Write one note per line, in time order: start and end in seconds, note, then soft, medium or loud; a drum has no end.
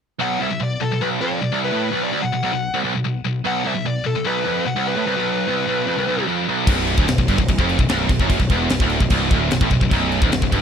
0.20 0.40 B1 medium
0.20 0.41 F#5 medium
0.40 0.50 C2 medium
0.40 0.60 E5 medium
0.50 0.59 B1 medium
0.60 0.76 B1 medium
0.60 0.83 D5 medium
0.80 0.91 B1 medium
0.80 1.02 A4 medium
0.92 1.00 B1 medium
1.01 1.20 B1 medium
1.01 1.07 B4 medium
1.21 1.41 F2 medium
1.21 1.59 D5 medium
1.42 1.52 B1 medium
1.52 1.71 C2 medium
1.64 1.82 B4 medium
1.72 1.92 A2 loud
1.83 2.03 B4 medium
1.93 2.12 B1 medium
2.04 2.24 D5 medium
2.13 2.22 D2 medium
2.22 2.31 B1 medium
2.22 2.79 F#5 medium
2.33 2.42 B1 medium
2.43 2.52 B1 medium
2.53 2.69 B1 medium
2.74 2.83 C2 medium
2.84 2.93 B1 medium
2.95 3.03 B1 medium
3.05 3.20 B1 medium
3.25 3.40 B1 medium
3.45 3.64 B1 medium
3.45 3.66 F#5 loud
3.65 3.74 C2 medium
3.65 3.85 E5 medium
3.74 3.85 B1 medium
3.86 4.01 B1 medium
3.86 4.05 D5 medium
4.04 4.14 B1 medium
4.04 4.24 A4 medium
4.15 4.23 B1 medium
4.25 4.44 B1 medium
4.25 4.68 B4 medium
4.45 4.65 F2 medium
4.66 4.76 B1 medium
4.66 4.87 F#5 loud
4.76 4.96 C2 medium
4.87 6.24 B4 medium
4.96 5.06 A2 loud
5.07 5.16 C2 medium
5.18 5.47 B1 medium
5.48 5.67 C2 medium
5.67 5.86 B1 medium
5.87 5.96 F2 medium
5.98 6.07 C2 medium
6.08 6.17 B1 loud
6.18 6.27 C2 medium
6.28 6.48 F2 loud
6.49 6.68 B1 medium
6.67 6.96 B0 medium
6.67 6.98 B1 medium
6.67 kick medium
6.67 crash loud
6.67 crash medium
6.88 crash medium
6.98 7.07 D1 medium
6.98 7.08 D2 loud
6.98 kick loud
7.08 7.18 B0 medium
7.08 7.18 B1 medium
7.08 snare loud
7.08 crash medium
7.18 7.28 B0 medium
7.18 7.29 B1 medium
7.18 kick medium
7.28 7.38 G1 medium
7.28 7.38 G2 loud
7.28 kick medium
7.28 crash medium
7.38 7.48 B0 medium
7.38 7.48 B1 medium
7.38 kick medium
7.49 7.58 B0 medium
7.49 7.59 B1 medium
7.49 kick medium
7.49 crash medium
7.58 7.78 F1 medium
7.58 7.79 F2 loud
7.58 kick medium
7.69 crash medium
7.79 7.88 B0 medium
7.79 7.89 B1 medium
7.79 kick medium
7.89 8.08 B0 medium
7.89 8.09 B1 loud
7.89 snare loud
7.89 crash medium
8.09 8.19 B0 medium
8.09 8.20 B1 medium
8.09 kick medium
8.09 crash medium
8.20 8.39 F#1 medium
8.20 8.40 F#2 loud
8.20 kick medium
8.30 kick medium
8.30 crash medium
8.39 8.49 B0 medium
8.39 8.51 B1 medium
8.39 kick medium
8.50 8.69 E1 medium
8.50 8.71 E2 loud
8.50 kick medium
8.50 crash medium
8.69 8.79 B0 medium
8.69 8.81 B1 medium
8.69 snare loud
8.69 crash medium
8.80 8.99 D1 loud
8.80 9.01 D2 loud
8.80 kick loud
8.90 crash medium
9.00 9.10 B0 medium
9.00 9.11 B1 medium
9.00 kick loud
9.10 9.29 C1 medium
9.10 9.31 C2 loud
9.10 kick loud
9.10 crash medium
9.31 9.50 D1 medium
9.31 9.51 D2 loud
9.31 kick loud
9.31 crash medium
9.51 9.60 B0 medium
9.51 9.62 B1 medium
9.51 snare loud
9.51 crash medium
9.61 9.70 A1 loud
9.61 9.71 A2 medium
9.61 kick loud
9.70 9.81 B0 medium
9.70 9.82 B1 medium
9.70 kick medium
9.70 crash medium
9.81 9.90 B0 medium
9.81 9.92 B1 medium
9.81 kick medium
9.91 10.20 B0 medium
9.91 10.22 B1 loud
9.91 kick medium
9.91 crash medium
10.12 crash medium
10.22 10.31 D1 loud
10.22 10.32 D2 loud
10.22 kick loud
10.32 10.42 B0 medium
10.32 10.42 B1 medium
10.32 snare loud
10.32 crash medium
10.42 10.52 B0 medium
10.42 10.53 B1 medium
10.42 kick medium
10.52 10.62 G1 loud
10.52 10.62 G2 loud
10.52 kick medium
10.52 crash medium